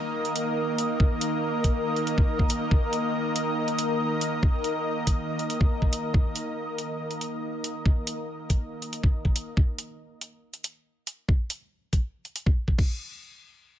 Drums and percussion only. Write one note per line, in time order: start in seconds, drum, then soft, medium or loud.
0.25 closed hi-hat soft
0.36 closed hi-hat medium
0.78 closed hi-hat medium
1.00 kick loud
1.21 closed hi-hat medium
1.64 kick medium
1.64 closed hi-hat medium
1.96 closed hi-hat soft
2.07 closed hi-hat medium
2.18 kick loud
2.39 kick medium
2.50 closed hi-hat medium
2.71 kick loud
2.93 closed hi-hat medium
3.36 closed hi-hat medium
3.68 closed hi-hat soft
3.79 closed hi-hat medium
4.21 closed hi-hat medium
4.43 kick loud
4.64 closed hi-hat medium
5.07 kick medium
5.07 closed hi-hat medium
5.39 closed hi-hat soft
5.50 closed hi-hat medium
5.61 kick loud
5.82 kick medium
5.93 closed hi-hat medium
6.14 kick loud
6.36 closed hi-hat medium
6.78 closed hi-hat medium
7.11 closed hi-hat soft
7.21 closed hi-hat medium
7.64 closed hi-hat medium
7.86 kick loud
8.07 closed hi-hat medium
8.50 kick medium
8.50 closed hi-hat medium
8.82 closed hi-hat soft
8.93 closed hi-hat medium
9.03 kick medium
9.25 kick medium
9.36 closed hi-hat medium
9.57 kick loud
9.79 closed hi-hat medium
10.21 closed hi-hat medium
10.54 closed hi-hat soft
10.64 closed hi-hat medium
11.07 closed hi-hat medium
11.28 kick loud
11.50 closed hi-hat medium
11.93 kick medium
11.93 closed hi-hat medium
12.25 closed hi-hat soft
12.36 closed hi-hat medium
12.46 kick medium
12.68 kick medium
12.78 kick loud
12.78 crash medium